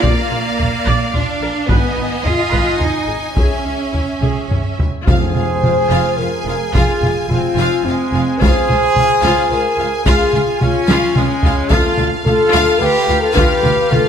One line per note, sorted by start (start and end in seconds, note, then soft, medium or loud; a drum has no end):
0.00 0.11 A#1 medium
0.00 1.14 A#3 loud
0.00 1.69 D5 medium
0.00 0.29 D5 medium
0.00 1.69 F5 medium
0.00 taiko loud
0.07 1.15 A#3 loud
0.30 0.38 A#1 medium
0.30 0.38 F4 medium
0.58 0.67 A#1 medium
0.58 0.66 A#4 medium
0.58 taiko low medium
0.85 0.93 A#1 medium
0.85 1.11 D5 medium
0.85 taiko medium
1.13 1.21 A#1 medium
1.13 1.68 D4 medium
1.13 1.21 F4 medium
1.13 taiko low medium
1.41 1.49 A#1 medium
1.41 1.50 A#4 medium
1.68 1.77 G#1 medium
1.68 2.24 B3 medium
1.68 2.25 B3 medium
1.68 1.96 B4 medium
1.68 3.38 D#5 medium
1.68 4.87 G#5 medium
1.68 taiko loud
1.97 2.05 G#1 medium
1.97 2.06 D#4 medium
2.24 2.32 G#1 medium
2.24 2.80 F4 loud
2.24 2.81 F4 medium
2.24 2.32 G#4 medium
2.24 taiko low medium
2.51 2.59 G#1 medium
2.51 2.78 B4 medium
2.51 taiko medium
2.80 2.88 G#1 medium
2.80 3.37 D#4 medium
2.80 2.89 D#4 medium
2.80 taiko low medium
3.07 3.15 G#1 medium
3.07 3.16 G#4 medium
3.36 3.44 C#2 medium
3.36 4.76 C#4 medium
3.36 3.64 G#4 medium
3.36 4.85 E5 medium
3.36 taiko loud
3.65 3.73 C#2 soft
3.65 3.73 C#4 soft
3.93 4.02 C#2 soft
3.93 4.01 E4 soft
3.93 taiko low medium
4.21 4.29 C#2 medium
4.21 4.48 G#4 medium
4.21 taiko mid medium
4.49 4.57 C#2 soft
4.49 4.57 C#4 soft
4.49 taiko low-mid medium
4.78 4.87 C#2 soft
4.78 4.86 E4 soft
4.78 taiko low medium
5.06 5.16 F1 medium
5.06 5.15 F2 medium
5.06 5.87 F2 loud
5.06 5.33 F4 medium
5.06 6.15 G#4 medium
5.06 6.15 C5 loud
5.06 5.34 F5 medium
5.06 8.37 G#5 medium
5.06 taiko loud
5.34 5.43 F1 medium
5.34 5.42 F2 medium
5.34 5.43 F4 soft
5.34 5.45 F5 medium
5.34 taiko mid medium
5.63 5.71 F1 medium
5.63 5.71 F2 medium
5.63 5.71 F4 medium
5.63 5.73 F5 medium
5.63 taiko mid medium
5.90 5.99 F1 medium
5.90 5.99 F2 medium
5.90 6.16 F4 medium
5.90 6.17 F5 medium
6.18 6.27 F1 medium
6.18 6.27 F2 soft
6.18 6.27 F4 medium
6.18 6.75 G#4 medium
6.18 6.74 A#4 medium
6.18 6.28 F5 medium
6.46 6.54 F1 medium
6.46 6.55 F2 medium
6.46 6.55 F4 medium
6.46 6.57 F5 medium
6.73 6.81 F1 medium
6.73 6.82 F2 medium
6.73 7.00 F4 medium
6.73 7.29 F4 medium
6.73 7.29 G#4 loud
6.73 7.01 F5 medium
6.73 taiko loud
7.02 7.10 F1 medium
7.02 7.10 F2 medium
7.02 7.11 F4 medium
7.02 7.13 F5 medium
7.02 taiko mid soft
7.29 7.37 F1 medium
7.29 7.38 F2 medium
7.29 7.85 C4 medium
7.29 7.84 F4 medium
7.29 7.38 F4 medium
7.29 taiko mid medium
7.33 7.41 F5 medium
7.56 7.64 F1 medium
7.56 7.66 F2 medium
7.56 7.83 F4 medium
7.56 7.84 F5 medium
7.84 7.92 F1 medium
7.84 7.94 F2 soft
7.84 8.41 G#3 medium
7.84 8.41 C4 medium
7.84 7.94 F4 medium
7.84 7.95 F5 medium
8.12 8.20 F1 medium
8.12 8.21 F2 medium
8.12 8.21 F4 medium
8.12 8.23 F5 medium
8.39 8.47 C#2 medium
8.39 8.49 C#2 medium
8.39 8.67 F4 medium
8.39 9.49 G#4 loud
8.39 9.50 C5 loud
8.39 8.68 F5 medium
8.39 11.67 G#5 medium
8.39 taiko loud
8.69 8.77 C#2 medium
8.69 8.78 C#2 medium
8.69 8.77 F4 medium
8.69 8.80 F5 soft
8.69 taiko mid medium
8.95 9.04 C#2 medium
8.95 9.05 C#2 medium
8.95 9.03 F4 medium
8.95 9.07 F5 medium
8.95 taiko mid medium
9.23 9.31 C#2 medium
9.23 9.32 C#2 medium
9.23 9.49 F4 medium
9.23 9.50 F5 medium
9.50 9.59 C#2 medium
9.50 9.59 F4 medium
9.50 10.06 G#4 medium
9.50 10.06 A#4 medium
9.50 9.61 F5 medium
9.78 9.86 C#2 medium
9.78 9.87 C#2 medium
9.78 9.86 F4 medium
9.78 9.87 F5 medium
10.06 10.14 C#2 medium
10.06 10.15 C#2 loud
10.06 10.60 F4 loud
10.06 10.32 F4 medium
10.06 10.60 G#4 loud
10.06 10.32 F5 loud
10.06 taiko loud
10.33 10.41 C#2 medium
10.33 10.42 C#2 medium
10.33 10.42 F4 medium
10.33 10.43 F5 medium
10.33 taiko mid medium
10.60 10.68 C#2 medium
10.60 10.70 C#2 medium
10.60 11.15 C#4 loud
10.60 11.16 F4 loud
10.60 10.69 F4 medium
10.60 10.69 F5 medium
10.60 taiko mid medium
10.87 10.95 C#2 loud
10.87 10.97 C#2 loud
10.87 11.14 F4 medium
10.87 11.15 F5 medium
10.87 taiko high medium
11.15 11.23 C#2 medium
11.15 11.71 G#3 loud
11.15 11.70 C#4 loud
11.15 11.24 F4 medium
11.15 11.25 F5 medium
11.15 taiko mid medium
11.43 11.51 C#2 medium
11.43 11.52 C#2 medium
11.43 11.52 F4 medium
11.43 11.53 F5 medium
11.43 taiko low medium
11.70 11.78 D2 loud
11.70 11.79 D2 loud
11.70 12.09 F4 loud
11.70 11.96 F4 loud
11.70 12.10 A4 loud
11.70 14.09 F5 medium
11.70 11.96 F5 medium
11.70 taiko loud
11.98 12.06 D2 medium
11.98 12.06 F4 medium
11.98 12.06 F5 medium
11.98 taiko mid soft
12.25 12.33 D2 medium
12.25 12.34 D2 medium
12.25 12.80 F4 loud
12.25 12.35 F4 medium
12.25 12.80 A4 loud
12.25 12.35 F5 medium
12.25 taiko mid medium
12.53 12.61 D2 loud
12.53 12.62 D2 loud
12.53 12.79 F4 loud
12.53 12.79 F5 loud
12.79 12.88 D2 medium
12.79 12.89 D2 medium
12.79 12.89 F4 medium
12.79 13.22 G4 loud
12.79 13.21 B4 loud
12.79 12.89 F5 medium
13.07 13.15 D2 medium
13.07 13.16 D2 medium
13.07 13.17 F4 medium
13.07 13.17 F5 medium
13.22 13.36 F4 medium
13.22 13.36 A4 loud
13.34 13.43 D2 loud
13.34 13.44 D2 medium
13.34 13.62 F4 loud
13.34 13.92 G4 loud
13.34 13.90 B4 loud
13.34 13.61 F5 medium
13.34 taiko loud
13.62 13.71 D2 medium
13.62 13.72 D2 medium
13.62 13.72 F4 medium
13.62 13.71 F5 medium
13.62 taiko mid soft
13.90 13.98 D2 medium
13.90 14.00 D2 medium
13.90 13.99 F4 medium
13.90 14.09 F4 loud
13.90 14.09 A4 loud
13.90 14.00 F5 medium
13.90 taiko mid medium